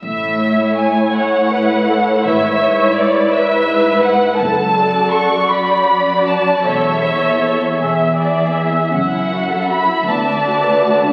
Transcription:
<<
  \new Staff \with { instrumentName = "Violin section" } { \time 6/8 \key a \major \tempo 4. = 54 e''4 gis''8 fis''4. | e''4 d''8 e''4 fis''8 | a''4 cis'''8 b''4 a''8 | e''4. r4. |
fis''4 b''8 a''4. | }
  \new Staff \with { instrumentName = "Viola section" } { \time 6/8 \key a \major r4. cis''8 b'8 a'8 | cis''4. b'4. | a'4. d''4. | cis''4. e''8 d''8 e''8 |
r4. d''4. | }
  \new Staff \with { instrumentName = "Violin section" } { \time 6/8 \key a \major << { r8 cis''4. cis''4 | b'8 b'4. b'4 | r8 d''4. d''4 | cis''8 cis''4 e''8 e''4 |
e''2. | } \\ { r8 e'4. e'4 | e'8 e'4. e'4 | r8 fis'4. fis'4 | a'8 a'4 gis'8 gis'4 |
cis'16 e'16 fis'16 a'16 fis'16 e'16 b16 d'16 fis'16 b'16 fis'16 d'16 | } >> }
  \new Staff \with { instrumentName = "Cello section" } { \clef bass \time 6/8 \key a \major a,4. a,4. | gis,4. gis,4. | fis,4. fis,4. | e,4. e,4. |
fis,4. d,4. | }
  \new Staff \with { instrumentName = "Double bass section" } { \clef bass \time 6/8 \key a \major a,,4 r2 | gis,,4 r2 | fis,,4 r2 | e,,4 r8 e,,4 r8 |
fis,,4 r8 d,4 r8 | }
>>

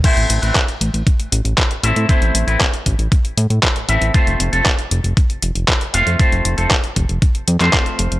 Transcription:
<<
  \new Staff \with { instrumentName = "Clean electric guitar" } { \time 4/4 \key a \minor \tempo 4 = 117 <a c' e' c''>8. <a c' e' b'>16 r2 r8 <a c' e' e''>8 | <a c' e' c''>8. <a c' e' b'>16 r2 r8 <a c' e' e''>8 | <a c' f' c''>8. <a c' f' a'>16 r2 r8 <a c' f' f''>8 | <a c' f' c''>8. <a c' f' a'>16 r4. r16 <a c' f' c''>4~ <a c' f' c''>16 | }
  \new Staff \with { instrumentName = "Analog synth bass" } { \clef bass \time 4/4 \key a \minor r16 a,,16 a,,16 a,,16 r8 a,,16 a,,16 r8 a,,16 a,,16 r8 a,,16 a,16 | r16 a,,16 a,,16 a,,16 r8 a,,16 a,,16 r8 a,16 a,16 r8 a,,16 a,,16 | r16 f,,16 f,,16 f,,16 r8 f,,16 f,,16 r8 f,,16 f,,16 r8 f,,16 f,16 | r16 f,,16 f,,16 f,,16 r8 f,,16 f,,16 r8 f,16 f,16 r8 f,,16 f,,16 | }
  \new DrumStaff \with { instrumentName = "Drums" } \drummode { \time 4/4 <cymc hh bd>16 hh16 hh16 hh16 <hc hh bd>16 hh16 hh16 hh16 <hh bd>16 hh16 hh16 hh16 <hc hh bd>16 hh16 hh16 hh16 | <hh bd>16 hh16 hh16 hh16 <hc hh bd>16 hh16 <hh bd>16 hh16 <hh bd>16 hh16 hh16 hh16 <hc hh bd>16 hh16 hh16 hh16 | <hh bd>16 hh16 hh16 hh16 <hc hh bd>16 hh16 hh16 hh16 <hh bd>16 hh16 hh16 hh16 <hc hh bd>16 hh16 hh16 hh16 | <hh bd>16 hh16 hh16 hh16 <hc hh bd>16 hh16 <hh bd>16 hh16 <hh bd>16 hh16 hh16 <hc hh>16 <hc hh bd>16 hh16 hh16 hh16 | }
>>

